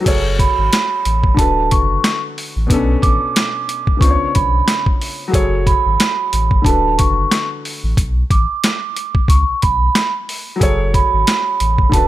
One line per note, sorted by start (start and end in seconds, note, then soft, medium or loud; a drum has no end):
0.00 1.32 F#3 medium
0.00 1.33 F#4 medium
0.00 1.34 G#4 medium
0.06 0.48 F#1 loud
0.06 1.35 A4 medium
0.06 1.36 C#5 medium
0.06 kick loud
0.06 closed hi-hat loud
0.06 crash loud
0.39 1.34 B5 medium
0.39 kick loud
0.39 closed hi-hat medium
0.58 0.69 G#1 loud
0.73 snare loud
0.73 closed hi-hat loud
1.05 1.32 A1 medium
1.05 closed hi-hat medium
1.24 kick medium
1.34 1.74 D1 loud
1.34 2.65 D3 medium
1.34 2.66 D4 medium
1.34 2.67 F#4 medium
1.34 1.68 A5 medium
1.34 kick loud
1.39 2.68 A4 medium
1.39 2.69 B4 medium
1.39 closed hi-hat medium
1.71 1.98 F#1 loud
1.71 2.20 C#6 medium
1.71 kick medium
1.71 closed hi-hat medium
2.04 snare loud
2.04 closed hi-hat medium
2.38 open hi-hat medium
2.56 2.67 A1 medium
2.67 2.96 B1 loud
2.67 3.97 B2 medium
2.67 3.97 B3 medium
2.67 3.99 D4 medium
2.67 kick loud
2.67 closed hi-hat loud
2.72 4.01 C#4 medium
2.72 4.00 A4 medium
3.02 3.18 A1 medium
3.02 3.97 D6 medium
3.02 kick loud
3.02 closed hi-hat medium
3.36 snare loud
3.36 closed hi-hat loud
3.69 closed hi-hat medium
3.87 kick medium
3.97 5.28 C#3 medium
3.97 5.29 B3 medium
3.97 5.30 D4 medium
3.97 4.31 C#6 medium
3.97 kick loud
4.01 4.16 C#2 loud
4.01 5.31 F4 medium
4.01 4.10 C5 medium
4.01 closed hi-hat medium
4.11 5.34 C#5 medium
4.21 4.27 B1 medium
4.35 4.62 B1 loud
4.35 4.83 B5 medium
4.35 kick medium
4.35 closed hi-hat medium
4.68 snare loud
4.68 closed hi-hat medium
4.86 kick loud
5.01 open hi-hat medium
5.28 6.60 F#3 medium
5.28 6.61 F#4 medium
5.28 6.62 G#4 medium
5.33 5.75 F#1 loud
5.33 6.63 A4 medium
5.33 6.64 C#5 medium
5.33 kick loud
5.33 closed hi-hat loud
5.66 6.61 B5 medium
5.66 kick loud
5.66 closed hi-hat medium
5.86 5.97 G#1 medium
6.00 snare loud
6.00 closed hi-hat loud
6.33 6.59 A1 medium
6.33 closed hi-hat medium
6.51 kick medium
6.62 7.01 D1 loud
6.62 7.93 D3 medium
6.62 7.94 D4 medium
6.62 7.95 F#4 medium
6.62 6.95 A5 loud
6.62 kick loud
6.66 7.96 A4 medium
6.66 7.96 B4 medium
6.66 closed hi-hat medium
6.98 7.26 F#1 loud
6.98 7.47 C#6 medium
6.98 kick medium
6.98 closed hi-hat medium
7.32 snare loud
7.32 closed hi-hat medium
7.65 open hi-hat medium
7.84 7.95 A1 medium
7.97 8.24 B1 loud
7.97 kick loud
7.97 closed hi-hat loud
8.30 8.46 A1 medium
8.30 9.25 D6 medium
8.30 kick loud
8.30 closed hi-hat medium
8.64 snare loud
8.64 closed hi-hat loud
8.96 closed hi-hat medium
9.15 kick medium
9.28 9.44 C#2 loud
9.28 9.59 C#6 medium
9.28 kick loud
9.28 closed hi-hat medium
9.49 9.54 B1 soft
9.62 9.89 B1 medium
9.62 10.11 B5 medium
9.62 kick medium
9.62 closed hi-hat medium
9.95 snare loud
9.95 closed hi-hat medium
10.29 open hi-hat medium
10.56 11.88 F#3 medium
10.56 11.88 F#4 medium
10.56 11.89 G#4 medium
10.61 11.03 F#1 loud
10.61 11.90 A4 medium
10.61 11.91 C#5 medium
10.61 kick loud
10.61 closed hi-hat loud
10.94 11.89 B5 medium
10.94 kick loud
10.94 closed hi-hat medium
11.14 11.25 G#1 medium
11.27 snare loud
11.27 closed hi-hat loud
11.60 11.87 A1 medium
11.60 closed hi-hat medium
11.78 kick medium
11.89 12.08 D1 loud
11.89 12.08 D3 medium
11.89 12.08 D4 medium
11.89 12.08 F#4 medium
11.89 12.08 A5 medium
11.89 kick loud
11.94 12.08 A4 medium
11.94 12.08 B4 medium
11.94 closed hi-hat medium